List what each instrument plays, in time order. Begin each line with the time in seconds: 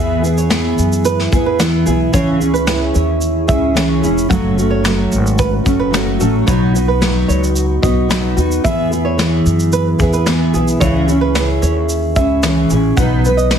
Already playing: upright bass E2, steel-string acoustic guitar E3 B3 E4 G#4, nylon-string guitar E5
0.22 steel-string acoustic guitar B3 E4 G#4, shaker
0.38 nylon-string guitar C#5, shaker
0.49 steel-string acoustic guitar E3 B3 E4 G#4, snare, shaker
0.78 upright bass F#2, shaker
0.92 shaker
1.05 nylon-string guitar B4, shaker
1.19 snare
1.32 upright bass E2, steel-string acoustic guitar B3 E4 G#4, kick, shaker
1.46 nylon-string guitar B4
1.59 steel-string acoustic guitar E3 B3 E4 G#4, snare, shaker
1.86 upright bass B1, steel-string acoustic guitar B3 E4 G#4, nylon-string guitar G#4, shaker
2.12 upright bass C#2, steel-string acoustic guitar C#3 E3 C#4 E4 G#4, nylon-string guitar C#5, kick, shaker
2.39 steel-string acoustic guitar C#4 E4 G#4, shaker
2.54 nylon-string guitar B4, shaker
2.67 steel-string acoustic guitar C#4 E4 G#4, snare, shaker
2.94 upright bass D#2, nylon-string guitar C#5, shaker
3.21 shaker
3.47 upright bass C#2, steel-string acoustic guitar C#4 E4 G#4, nylon-string guitar E5, kick, shaker
3.74 steel-string acoustic guitar E3 C#4 E4 G#4, snare, shaker
4.02 upright bass E1, steel-string acoustic guitar C#4 E4 G#4, shaker
4.18 shaker
4.29 upright bass F#1, steel-string acoustic guitar F#2 C#3 F#3 A3 C#4 F#4, nylon-string guitar F#5, kick, shaker
4.57 steel-string acoustic guitar F#3 A3 C#4 F#4, shaker
4.71 nylon-string guitar C#5
4.83 steel-string acoustic guitar F#3 A3 C#4 F#4, snare, shaker
5.12 upright bass G#1, shaker
5.27 shaker
5.38 nylon-string guitar B4, kick, shaker
5.64 upright bass F#1, steel-string acoustic guitar F#3 A3 C#4 F#4, kick, shaker
5.79 nylon-string guitar B4
5.91 steel-string acoustic guitar F#3 A3 C#4 F#4, snare, shaker
6.19 upright bass A1, steel-string acoustic guitar F#3 A3 C#4 F#4, nylon-string guitar A4, shaker
6.46 upright bass B1, steel-string acoustic guitar B2 F#3 B3 D#4 F#4, nylon-string guitar C#5, kick, shaker
6.74 steel-string acoustic guitar B3 D#4 F#4, shaker
6.88 nylon-string guitar B4
7.00 steel-string acoustic guitar F#3 B3 D#4 F#4, snare, shaker
7.28 upright bass C#2, nylon-string guitar C#5, shaker
7.44 shaker
7.56 shaker
7.82 upright bass B1, steel-string acoustic guitar B3 D#4 F#4, nylon-string guitar D#5, kick, shaker
8.09 steel-string acoustic guitar F#3 B3 D#4 F#4, snare, shaker
8.37 upright bass D#2, steel-string acoustic guitar B3 D#4 F#4, shaker
8.51 shaker
8.64 upright bass E2, steel-string acoustic guitar E3 B3 E4 G#4, nylon-string guitar E5, kick, shaker
8.91 steel-string acoustic guitar B3 E4 G#4, shaker
9.05 nylon-string guitar C#5
9.17 steel-string acoustic guitar E3 B3 E4 G#4, snare, shaker
9.46 upright bass F#2, shaker
9.60 shaker
9.73 nylon-string guitar B4, shaker
9.99 upright bass E2, steel-string acoustic guitar B3 E4 G#4, kick, shaker
10.13 nylon-string guitar B4, shaker
10.26 steel-string acoustic guitar E3 B3 E4 G#4, snare, shaker
10.54 upright bass B1, steel-string acoustic guitar B3 E4 G#4, nylon-string guitar G#4, shaker
10.68 shaker
10.80 upright bass C#2, steel-string acoustic guitar C#3 E3 C#4 E4 G#4, nylon-string guitar C#5, kick, shaker
11.07 steel-string acoustic guitar C#4 E4 G#4, shaker
11.21 nylon-string guitar B4
11.35 steel-string acoustic guitar C#4 E4 G#4, snare, shaker
11.62 upright bass D#2, nylon-string guitar C#5, shaker
11.89 shaker
12.16 upright bass C#2, steel-string acoustic guitar C#4 E4 G#4, nylon-string guitar E5, kick, shaker
12.43 steel-string acoustic guitar E3 C#4 E4 G#4, snare, shaker
12.70 upright bass A1, steel-string acoustic guitar C#4 E4 G#4, shaker
12.97 upright bass B1, steel-string acoustic guitar B2 F#3 B3 D#4 B4, nylon-string guitar F#5, kick, shaker
13.25 steel-string acoustic guitar B3 D#4 B4, shaker
13.37 nylon-string guitar D#5, shaker
13.51 steel-string acoustic guitar F#3 B3 D#4 B4, snare, shaker